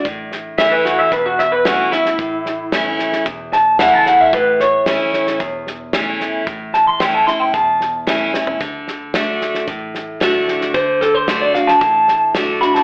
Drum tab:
HH |----p-------p---|----p-------p---|----p-------p---|----p-------p---|
SD |o-o-o-o-o-o-o-oo|o-o-o-ooo-o-o-o-|o-o-o-ooo-o-o-o-|o-o-o-o-o-o-o-o-|
FT |----------------|----------------|----------------|---------------o|
BD |o-------o-------|o-------o-------|o-------o-------|o-------o-------|

HH |----p-------p---|----p-------p---|
SD |o-o-o-ooo-o-o-oo|o-o-o-ooo-o-o-oo|
FT |----------------|----------------|
BD |o-------o-------|o-------o-------|